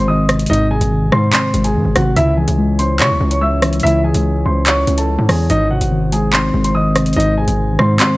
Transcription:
Already playing: G#1 G#2 C3 D#3 G#3 C4
0.08 D#3 D#5 D#6
0.29 C3, cross-stick, closed hi-hat
0.39 closed hi-hat
0.46 G#1 G#2 D#5, closed hi-hat
0.51 D#4, closed hi-hat
0.71 C3 G#4 G#5
0.81 G#1, closed hi-hat
0.91 D#3
1.02 A1
1.12 G#2 G#3 C5 C6, cross-stick
1.33 C4 C5 C6, clap, closed hi-hat
1.54 G#1 G#3, closed hi-hat
1.64 G#4 G#5, closed hi-hat
1.75 G#2 D#3
1.85 G#1
1.96 G#1 C3 F#4 F#5, cross-stick, closed hi-hat
2.16 C#2 C#3 C#4 E4 C#5 E5, closed hi-hat
2.37 E3 G#4 G#5
2.48 C#2, closed hi-hat
2.58 G#3
2.79 C#4 C5 C6, closed hi-hat
3.00 C#3 C#5 C#6, clap
3.10 C#2
3.21 C#2 C#4
3.31 C#5 C#6, closed hi-hat
3.41 G#3 E5 E6
3.62 E3, cross-stick, closed hi-hat
3.73 closed hi-hat
3.80 C#2 C#3 E5, closed hi-hat
3.84 E4, closed hi-hat
4.04 E3 G#4 G#5
4.14 C#2, closed hi-hat
4.45 C#2 C#4 C5 C6
4.66 C#5 C#6, clap, closed hi-hat
4.87 C#2 C#4, closed hi-hat
4.98 A4 A5, closed hi-hat
5.08 G#3
5.19 G#2
5.29 E2 E3 G#4 G#5, cross-stick, open hi-hat
5.50 G#1 G#2 C4 D#4 C5 D#5, closed hi-hat
5.71 C3 F#4 F#5
5.81 G#1, closed hi-hat
5.91 D#3
6.12 G#3 G#4 G#5, closed hi-hat
6.33 C4 C5 C6, clap
6.54 G#1 G#3
6.64 C5 C6, closed hi-hat
6.75 D#3 D#5 D#6
6.96 C3, cross-stick, closed hi-hat
7.06 closed hi-hat
7.13 G#1 G#2 D#5, closed hi-hat
7.17 D#4, closed hi-hat
7.37 C3 G#4 G#5
7.48 G#1, closed hi-hat
7.58 D#3
7.69 A1
7.79 G#2 G#3 C5 C6, cross-stick
8.00 C4 C5 C6, clap, closed hi-hat

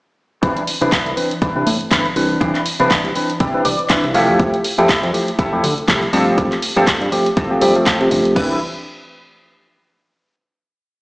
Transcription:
0.43 C2 E3 C4 D4 E4 B4, kick, closed hi-hat
0.57 closed hi-hat
0.67 open hi-hat
0.81 C2 E3 C4 D4 E4 B4, closed hi-hat
0.92 kick, clap, closed hi-hat
1.06 C2, closed hi-hat
1.16 E3 C4 D4 B4, open hi-hat
1.31 closed hi-hat
1.42 C2 D4 E4 B4, kick, closed hi-hat
1.55 C2 E3 C4 D4 B4
1.67 A2, open hi-hat
1.81 closed hi-hat
1.91 G1 E3 C4 D4 E4 B4, kick, clap, closed hi-hat
2.05 closed hi-hat
2.16 C2 E3 C4 D4 B4, muted clean electric guitar stroke, open hi-hat
2.41 C2 E3 C4 D4 E4 B4, kick, closed hi-hat
2.55 clap, closed hi-hat
2.66 open hi-hat
2.80 C2 E3 C4 D4 E4 B4, closed hi-hat
2.91 kick, clap, closed hi-hat
3.04 C2, closed hi-hat
3.15 E3 C4 D4 B4, open hi-hat
3.30 closed hi-hat
3.40 C3 D4 E4 G4, kick, closed hi-hat
3.54 C2 E3 C4 D4 B4
3.65 C2 D5, open hi-hat
3.79 closed hi-hat
3.89 E3 C4 D4 E4 B4 E5, kick, clap, closed hi-hat
4.04 C2, closed hi-hat
4.14 F3 A3 E4 G4 A4 F5, open hi-hat
4.29 F2
4.39 F2 F3 A3 E4 G4, kick, closed hi-hat
4.54 closed hi-hat
4.64 open hi-hat
4.78 F2 F3 A3 E4 G4 A4, closed hi-hat
4.89 kick, clap, closed hi-hat
5.03 F2, closed hi-hat
5.13 F3 A3 E4 G4, open hi-hat
5.28 closed hi-hat
5.39 F2 E4 G4 A4, kick, closed hi-hat
5.52 F2 F3 A3 E4 G4
5.64 D3, open hi-hat
5.78 C2, closed hi-hat
5.88 C2 F3 A3 E4 G4 A4, kick, clap, closed hi-hat
6.03 closed hi-hat
6.12 G2 F3 A3 C4 F4 G4 A4, open hi-hat
6.37 G2 F3 A3 C4 G4, kick, closed hi-hat
6.52 clap, closed hi-hat
6.62 open hi-hat
6.76 G2 F3 A3 C4 F4 G4 A4, closed hi-hat
6.87 kick, clap, closed hi-hat
7.01 G2, closed hi-hat
7.12 F3 A3 C4 G4, open hi-hat
7.26 closed hi-hat
7.37 G1 C4 F4 A4, kick, closed hi-hat
7.50 G2 F3 A3 C4 G4
7.61 G2 F3 A3 C4 G4, open hi-hat
7.75 F3 A3 C4 A4, closed hi-hat
7.86 C4 F4 A4, kick, clap, closed hi-hat
8.00 C3 F3 A3 C4 G4, closed hi-hat
8.11 G1, muted clean electric guitar stroke, open hi-hat
8.25 closed hi-hat
8.35 C2 E3 C4 D4 E4 B4, kick, crash

